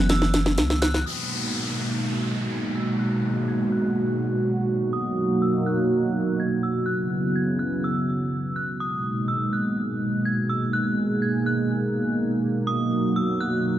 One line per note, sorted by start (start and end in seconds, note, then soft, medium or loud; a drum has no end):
0.00 0.59 F#1 loud
0.00 1.04 E3 medium
0.00 1.02 F#3 medium
0.00 1.02 B3 medium
0.00 1.04 C#4 medium
0.00 1.02 F#4 medium
0.09 0.78 E6 medium
0.09 snare loud
0.09 closed hi-hat medium
0.22 snare medium
0.34 snare loud
0.34 closed hi-hat medium
0.46 snare medium
0.58 1.04 C#2 loud
0.58 snare loud
0.58 closed hi-hat medium
0.70 snare medium
0.82 1.05 F#6 medium
0.82 snare loud
0.82 closed hi-hat medium
0.94 snare loud
1.06 6.83 B2 medium
1.06 4.89 G#3 medium
1.06 4.89 A#3 medium
1.06 4.89 D#4 medium
1.06 10.70 F#4 medium
1.06 1.52 D#6 medium
1.06 downlifter medium
1.54 1.77 E6 medium
1.79 2.47 F#6 medium
2.51 2.74 G#6 medium
2.75 2.98 E6 medium
2.99 3.45 F#6 loud
3.48 3.71 G#6 medium
3.72 4.41 F#6 medium
4.93 6.85 F#3 medium
4.93 6.85 A#3 medium
4.93 6.85 D#4 medium
4.93 5.39 D#6 loud
5.42 5.65 E6 medium
5.66 6.35 F#6 medium
6.40 6.62 G#6 medium
6.63 6.86 E6 medium
6.86 8.78 C#3 medium
6.86 8.78 F#3 medium
6.86 8.78 B3 medium
6.86 8.78 E4 medium
6.86 7.32 F#6 loud
7.36 7.58 G#6 medium
7.59 7.82 F#6 medium
7.84 8.52 E6 medium
8.56 8.79 F#6 medium
8.80 13.79 B2 medium
8.80 12.64 G#3 medium
8.80 13.79 A#3 medium
8.80 13.79 D#4 medium
8.80 9.26 D#6 medium
9.28 9.51 E6 medium
9.53 10.21 F#6 medium
10.25 10.48 G#6 medium
10.49 10.73 E6 medium
10.73 12.66 G#4 medium
10.73 11.19 F#6 loud
11.22 11.45 G#6 medium
11.46 12.15 F#6 medium
12.67 13.79 F#3 medium
12.67 13.79 F#4 medium
12.67 13.13 D#6 loud
13.16 13.39 E6 medium
13.41 13.79 F#6 medium